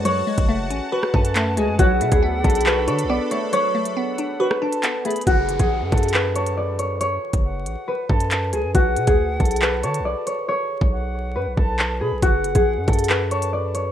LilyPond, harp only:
\new Staff \with { instrumentName = "Harp" } { \time 4/4 \key fis \minor \tempo 4 = 138 cis''2 b'8 a'4 gis'8 | fis'8. gis'16 r8 a'8 b'8 cis''8 d''8 cis''8 | cis''2 b'8 a'4 gis'8 | fis'8. gis'16 r8 a'8 b'8 cis''8 d''8 cis''8 |
cis''2 b'8 a'4 gis'8 | fis'8. gis'16 r8 a'8 b'8 cis''8 d''8 cis''8 | cis''2 b'8 a'4 gis'8 | fis'8. gis'16 r8 a'8 b'8 cis''8 d''8 cis''8 | }